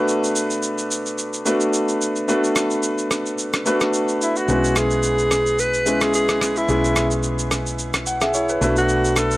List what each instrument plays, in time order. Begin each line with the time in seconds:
Already playing: grand piano A3 B3 D4 F#4 B4
0.08 shaker
0.24 shaker
0.35 shaker
0.50 shaker
0.62 shaker
0.78 shaker
0.91 shaker
1.06 shaker
1.18 shaker
1.33 shaker
1.45 grand piano A3 B3 D4 F#4 B4, shaker
1.60 shaker
1.73 shaker
1.88 shaker
2.01 shaker
2.16 shaker
2.28 grand piano A3 B3 D4 F#4 B4, shaker
2.44 shaker
2.56 cross-stick, shaker
2.70 shaker
2.83 shaker
2.98 shaker
3.11 cross-stick, shaker
3.26 shaker
3.38 shaker
3.53 cross-stick, shaker
3.66 grand piano A3 B3 D4 F#4 B4, shaker
3.80 cross-stick, shaker
3.93 shaker
4.08 shaker
4.21 alto saxophone E4, shaker
4.36 alto saxophone F#4, shaker
4.48 fingered electric bass B1, grand piano G#3 B3 C#4 E4 B4, shaker
4.64 shaker
4.76 alto saxophone G#4, cross-stick, shaker
4.90 shaker
5.03 shaker
5.18 shaker
5.31 cross-stick, shaker
5.46 shaker
5.59 alto saxophone B4, shaker
5.74 shaker
5.86 grand piano G#3 B3 C#4 E4 B4, shaker
6.01 alto saxophone G#4, cross-stick, shaker
6.14 alto saxophone G#4, shaker
6.29 cross-stick, shaker
6.41 cross-stick, shaker
6.56 alto saxophone E4, shaker
6.68 fingered electric bass B1, grand piano G#3 B3 C#4 E4 G#4, shaker
6.84 shaker
6.96 cross-stick, shaker
7.11 shaker
7.23 shaker
7.39 shaker
7.51 cross-stick, shaker
7.66 shaker
7.79 shaker
7.94 cross-stick, shaker
8.06 grand piano F#5, shaker
8.21 grand piano G#4 E5, cross-stick, shaker
8.34 grand piano E4 C#5, shaker
8.49 grand piano B4, shaker
8.61 fingered electric bass B1, grand piano A3 B3 D4 F#4 B4, alto saxophone E4, shaker
8.76 alto saxophone F#4, shaker
8.89 shaker
9.04 shaker
9.16 alto saxophone A4, cross-stick, shaker
9.31 shaker